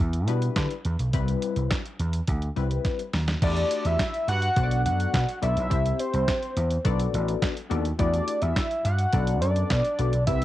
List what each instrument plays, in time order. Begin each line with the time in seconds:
0.00 slap bass E2
0.13 closed hi-hat
0.28 slap bass B2, analog polysynth G3 D4 E4 B4, closed hi-hat
0.42 closed hi-hat
0.56 slap bass D3, kick, snare, clap, closed hi-hat
0.71 closed hi-hat
0.85 slap bass E2, closed hi-hat
0.99 slap bass B1, closed hi-hat
1.13 slap bass C2, analog polysynth G3 C4 E4 B4, kick, closed hi-hat
1.28 closed hi-hat
1.42 closed hi-hat
1.56 slap bass C2, closed hi-hat
1.71 kick, snare, clap, closed hi-hat
1.85 closed hi-hat
1.99 slap bass E2, closed hi-hat
2.13 closed hi-hat
2.27 slap bass D2, kick, closed hi-hat
2.42 closed hi-hat
2.56 slap bass C2, analog polysynth G3 C4 E4 B4, closed hi-hat
2.71 closed hi-hat
2.85 kick, snare, closed hi-hat
2.99 closed hi-hat
3.13 slap bass D#2, snare, open hi-hat
3.28 snare, closed hi-hat
3.42 slap bass E2, analog polysynth A3 E4 F#4 G4 D5, analog synth lead D5, kick, closed hi-hat, crash
3.57 closed hi-hat
3.71 closed hi-hat
3.85 slap bass E2, analog synth lead E5, closed hi-hat
3.99 kick, snare, clap, closed hi-hat
4.14 closed hi-hat
4.28 slap bass G2, analog synth lead F#5, closed hi-hat
4.42 closed hi-hat
4.56 slap bass B1, analog polysynth B3 D4 F#4 A4 C5, kick, closed hi-hat
4.63 analog polysynth D5
4.71 closed hi-hat
4.85 slap bass F#2, analog synth lead F#5, closed hi-hat
5.00 closed hi-hat
5.14 slap bass B2, kick, snare, clap, closed hi-hat
5.29 closed hi-hat
5.42 slap bass B1, analog polysynth B3 D4 F#4 A4 D5, analog synth lead E5, closed hi-hat
5.57 slap bass B1, closed hi-hat
5.70 slap bass C2, analog polysynth C4 E4 G4 C5 E5, kick, closed hi-hat
5.85 closed hi-hat
5.99 analog synth lead C5, closed hi-hat
6.14 slap bass C2, closed hi-hat
6.28 kick, snare, clap, closed hi-hat
6.43 closed hi-hat
6.57 slap bass E2, closed hi-hat
6.71 closed hi-hat
6.85 slap bass B1, analog polysynth B3 D4 F#4 A4 D5, kick, closed hi-hat
7.00 closed hi-hat
7.14 slap bass A1, closed hi-hat
7.28 closed hi-hat
7.42 kick, snare, clap, closed hi-hat
7.57 closed hi-hat
7.70 slap bass D#2, analog polysynth B3 D4 F#4 A4 D5, closed hi-hat
7.85 closed hi-hat
7.99 slap bass E2, analog polysynth A3 E4 F#4 G4 D5, analog synth lead D5, kick, closed hi-hat
8.13 closed hi-hat
8.28 closed hi-hat
8.42 slap bass E2, analog synth lead E5, closed hi-hat
8.56 kick, snare, clap, closed hi-hat
8.71 closed hi-hat
8.85 slap bass G2, analog synth lead F#5, closed hi-hat
8.99 closed hi-hat
9.13 slap bass B1, analog polysynth B3 D4 F#4 A4 D5, kick, closed hi-hat
9.27 closed hi-hat
9.42 slap bass F#2, analog synth lead D5, closed hi-hat
9.56 closed hi-hat
9.70 slap bass B2, kick, snare, clap, closed hi-hat
9.85 closed hi-hat
9.99 slap bass B1, analog polysynth B3 D4 F#4 A4 D5, closed hi-hat
10.13 slap bass B1, closed hi-hat
10.27 slap bass C2, analog polysynth C4 E4 G4 B4 E5, analog synth lead E5, kick, closed hi-hat